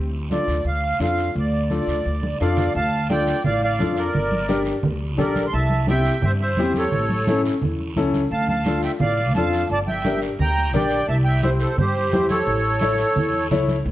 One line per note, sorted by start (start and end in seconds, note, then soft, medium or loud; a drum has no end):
0.00 0.37 D2 loud
0.31 0.55 D4 medium
0.31 0.56 F4 medium
0.31 0.56 A4 medium
0.31 0.64 D5 medium
0.31 high conga medium
0.31 short guiro medium
0.48 0.62 D2 medium
0.48 short guiro medium
0.65 0.93 D2 medium
0.65 0.99 F5 loud
0.65 high conga soft
0.65 long guiro medium
1.00 1.28 F2 loud
1.00 1.25 D4 medium
1.00 1.25 F4 medium
1.00 1.25 A4 medium
1.00 1.34 F5 medium
1.00 high conga medium
1.00 short guiro medium
1.18 short guiro medium
1.35 1.77 D2 loud
1.35 2.38 D5 medium
1.35 high conga soft
1.35 long guiro medium
1.70 1.95 D4 medium
1.70 1.95 F4 medium
1.70 1.95 A4 medium
1.70 high conga medium
1.70 short guiro medium
1.87 2.01 D2 medium
1.87 short guiro medium
2.05 2.34 D2 medium
2.05 high conga soft
2.05 long guiro medium
2.23 high conga medium
2.40 2.69 F2 loud
2.40 2.65 D4 medium
2.40 2.66 F4 medium
2.40 2.66 A4 medium
2.40 2.73 D5 medium
2.40 2.73 F5 medium
2.40 short guiro medium
2.57 low conga medium
2.57 short guiro medium
2.75 3.31 D2 loud
2.75 3.08 F5 medium
2.75 3.08 A5 loud
2.75 high conga soft
2.75 long guiro medium
3.10 3.35 D4 medium
3.10 3.35 F4 medium
3.10 3.35 A4 medium
3.10 3.43 D5 medium
3.10 3.43 G5 loud
3.10 high conga medium
3.10 short guiro medium
3.27 short guiro medium
3.45 3.80 A1 medium
3.45 3.62 D5 medium
3.45 3.61 F5 loud
3.45 low conga medium
3.45 long guiro medium
3.63 3.96 D5 medium
3.63 3.99 F5 medium
3.63 high conga soft
3.79 4.07 F2 medium
3.79 4.04 D4 medium
3.79 4.04 F4 medium
3.79 4.05 A4 medium
3.79 high conga medium
3.79 short guiro medium
3.96 4.63 A#4 medium
3.96 4.63 D5 medium
3.96 short guiro medium
4.14 4.70 G1 medium
4.14 high conga soft
4.14 low conga medium
4.14 long guiro medium
4.32 high conga medium
4.49 4.73 D4 medium
4.49 4.73 G4 medium
4.49 4.73 A#4 medium
4.49 high conga medium
4.49 short guiro medium
4.65 short guiro medium
4.83 5.18 D2 medium
4.83 low conga medium
4.83 long guiro medium
5.01 high conga soft
5.17 5.46 A#1 medium
5.17 5.42 D4 medium
5.17 5.43 G4 medium
5.17 5.43 A4 medium
5.17 5.45 A#4 medium
5.17 5.45 D5 medium
5.17 high conga medium
5.17 low conga medium
5.17 short guiro medium
5.35 high conga medium
5.35 short guiro medium
5.46 5.53 C6 medium
5.53 6.09 C2 loud
5.53 5.86 E5 medium
5.53 5.85 A5 loud
5.53 high conga soft
5.53 long guiro medium
5.70 high conga medium
5.87 6.12 C4 medium
5.87 6.12 E4 medium
5.87 6.13 G4 medium
5.87 6.21 E5 medium
5.87 6.25 G5 loud
5.87 high conga medium
5.87 short guiro medium
6.05 short guiro medium
6.22 6.58 G2 medium
6.22 6.32 C5 medium
6.22 6.31 E5 loud
6.22 low conga medium
6.22 long guiro medium
6.40 6.73 C5 medium
6.40 6.73 E5 medium
6.40 high conga soft
6.57 6.85 E2 medium
6.57 6.83 C4 medium
6.57 6.82 E4 medium
6.57 6.83 G4 medium
6.57 high conga medium
6.57 short guiro medium
6.74 7.42 A4 medium
6.74 7.42 C#5 medium
6.74 high conga medium
6.74 short guiro medium
6.92 7.48 A1 medium
6.92 high conga soft
6.92 low conga medium
6.92 long guiro medium
7.10 high conga medium
7.27 7.52 C#4 medium
7.27 7.52 E4 medium
7.27 7.52 A4 medium
7.27 high conga loud
7.27 short guiro medium
7.45 short guiro medium
7.61 7.96 E2 medium
7.61 low conga medium
7.61 long guiro medium
7.80 high conga soft
7.96 8.24 C#2 medium
7.96 8.21 C#4 medium
7.96 8.21 E4 medium
7.96 8.21 A4 loud
7.96 high conga medium
7.96 short guiro medium
8.14 high conga medium
8.14 short guiro medium
8.31 8.86 D2 loud
8.31 8.48 F5 medium
8.31 8.47 A5 loud
8.31 high conga soft
8.31 long guiro medium
8.49 8.82 F5 medium
8.49 8.81 A5 medium
8.49 high conga medium
8.65 8.90 D4 medium
8.65 8.91 F4 medium
8.65 8.91 A4 medium
8.65 high conga medium
8.65 short guiro medium
8.83 8.92 E5 medium
8.83 8.92 G5 medium
8.83 short guiro medium
9.00 9.34 A1 medium
9.00 9.33 D5 medium
9.00 9.33 F5 loud
9.00 low conga medium
9.00 long guiro medium
9.19 high conga soft
9.34 9.62 F2 medium
9.34 9.60 D4 medium
9.34 9.60 F4 medium
9.34 9.60 A4 medium
9.34 9.68 F5 medium
9.34 9.68 A5 medium
9.34 high conga medium
9.34 short guiro medium
9.53 short guiro medium
9.69 10.25 G1 loud
9.69 9.80 D5 medium
9.69 9.78 A5 loud
9.69 high conga soft
9.69 long guiro medium
9.87 10.20 E5 medium
9.87 10.19 G5 medium
9.87 high conga medium
10.04 10.29 D4 medium
10.04 10.29 G4 medium
10.04 10.29 A#4 medium
10.04 high conga loud
10.04 short guiro medium
10.21 short guiro medium
10.39 10.74 D2 loud
10.39 10.73 G5 medium
10.39 10.72 A#5 loud
10.39 low conga medium
10.39 long guiro medium
10.57 high conga soft
10.73 11.02 A#1 medium
10.73 10.98 D4 medium
10.73 10.98 G4 medium
10.73 10.98 A#4 medium
10.73 11.07 D5 medium
10.73 11.06 G5 loud
10.73 high conga medium
10.73 low conga medium
10.73 short guiro medium
10.90 short guiro medium
11.07 11.64 C2 loud
11.07 11.17 E5 medium
11.07 11.16 A5 loud
11.07 high conga soft
11.07 long guiro medium
11.25 11.41 E5 medium
11.25 11.41 G5 loud
11.42 11.67 E4 medium
11.42 11.68 G4 medium
11.42 11.51 C5 medium
11.42 11.68 C5 medium
11.42 11.50 E5 loud
11.42 high conga loud
11.42 short guiro medium
11.59 11.77 A4 medium
11.59 11.76 C5 medium
11.59 short guiro medium
11.76 12.12 G2 medium
11.76 12.27 G4 medium
11.76 12.26 C5 medium
11.76 low conga medium
11.76 long guiro medium
11.96 high conga soft
12.12 12.40 E2 medium
12.12 12.37 E4 medium
12.12 12.37 G4 medium
12.12 12.37 C5 medium
12.12 high conga medium
12.12 short guiro medium
12.29 13.48 A4 medium
12.29 13.47 C#5 loud
12.29 high conga medium
12.29 short guiro medium
12.47 13.02 A1 loud
12.47 high conga soft
12.47 long guiro medium
12.81 13.06 E4 medium
12.81 13.06 A4 medium
12.81 13.06 C#5 medium
12.81 high conga medium
12.81 short guiro medium
12.98 short guiro medium
13.16 13.51 E2 medium
13.16 low conga medium
13.16 long guiro medium
13.34 high conga soft
13.51 13.79 C#2 loud
13.51 13.75 E4 medium
13.51 13.76 A4 medium
13.51 13.76 C#5 loud
13.51 high conga medium
13.51 low conga medium
13.51 short guiro medium
13.68 high conga medium
13.68 short guiro medium
13.85 13.92 D2 loud
13.85 high conga soft
13.85 long guiro medium